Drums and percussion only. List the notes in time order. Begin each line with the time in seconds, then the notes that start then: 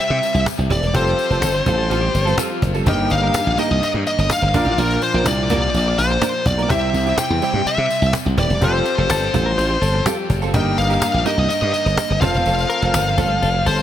0.23 cajon slap, tambourine
0.35 tambourine
0.46 cajon slap, tambourine
0.70 cajon bass, tambourine
0.83 tambourine
0.95 cajon bass, tambourine
1.08 tambourine
1.18 cajon slap, tambourine
1.31 tambourine
1.42 cajon slap, tambourine
1.66 cajon bass, tambourine
1.91 tambourine
2.15 tambourine
2.27 tambourine
2.38 cajon slap, tambourine
2.62 cajon bass, tambourine
2.74 tambourine
2.86 cajon bass, tambourine
3.10 tambourine
3.34 cajon slap, tambourine
3.58 tambourine
3.83 tambourine
4.06 cajon slap, tambourine
4.19 tambourine
4.30 cajon slap, tambourine
4.54 cajon bass, tambourine
4.78 tambourine
4.91 tambourine
5.01 cajon slap, tambourine
5.26 cajon slap, tambourine
5.50 cajon bass, tambourine
5.75 tambourine
5.99 tambourine
6.22 cajon slap, tambourine
6.46 cajon bass, tambourine
6.59 tambourine
6.70 cajon bass, tambourine
6.94 cajon slap, tambourine
7.07 tambourine
7.18 cajon slap, tambourine
7.42 tambourine
7.66 cajon slap, tambourine
7.90 cajon slap, tambourine
8.03 tambourine
8.13 cajon slap, tambourine
8.38 cajon bass, tambourine
8.50 tambourine
8.61 cajon bass, tambourine
8.85 cajon slap, tambourine
9.10 cajon slap, tambourine
9.34 cajon bass, tambourine
9.58 cajon slap, tambourine
9.82 tambourine
10.06 cajon slap, tambourine
10.30 cajon bass, tambourine
10.42 tambourine
10.54 cajon bass, tambourine
10.78 tambourine
10.90 tambourine
11.02 cajon slap, tambourine
11.26 tambourine
11.50 cajon slap, tambourine
11.74 cajon slap, tambourine
11.86 tambourine
11.97 cajon slap, tambourine
12.22 cajon bass, tambourine
12.34 tambourine
12.45 cajon slap, tambourine
12.59 tambourine
12.70 cajon slap, tambourine
12.82 tambourine
12.94 cajon slap, tambourine
13.18 cajon bass, tambourine
13.30 cajon slap
13.43 tambourine
13.66 tambourine
13.78 cajon slap, tambourine